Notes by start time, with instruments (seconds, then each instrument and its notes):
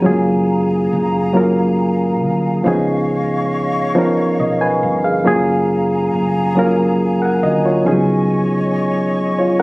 Already playing: flute section G#5
0.02 fretless electric bass F#1, reed electric piano F#3 G#3 C#4 F4 G#4, flute section G#4 F5 A#5
0.10 reed electric piano A#3
0.93 fretless electric bass F#1
1.33 reed electric piano F#3 A#3 C#4 F4 A#4
2.22 fretless electric bass D2
2.63 fretless electric bass C#2, reed electric piano F3 B3 C#4 D#4, flute section C#5 D#5 C#6
2.68 reed electric piano G#4
3.95 reed electric piano F3 B3 C#4 D#4 A#4
4.40 fretless electric bass B1, reed electric piano D#5
4.61 reed electric piano B4 G#5
4.83 fretless electric bass G1
5.04 reed electric piano G#4 F5
5.24 fretless electric bass F#1, reed electric piano F#3 A#3 C#4 F4 G#4, flute section G#4 G#5 A#5
6.13 fretless electric bass F#1
6.55 reed electric piano F#3 A#3 C#4 F4
6.59 reed electric piano A#4
7.22 reed electric piano A#4 F#5
7.43 fretless electric bass D2, reed electric piano F#4 D#5
7.65 reed electric piano F4 C#5
7.85 fretless electric bass C#2, reed electric piano F3 B3 C#4 D#4 G#4, flute section C#5 D#5 C#6
7.91 reed electric piano F#3
9.39 reed electric piano F4 C#5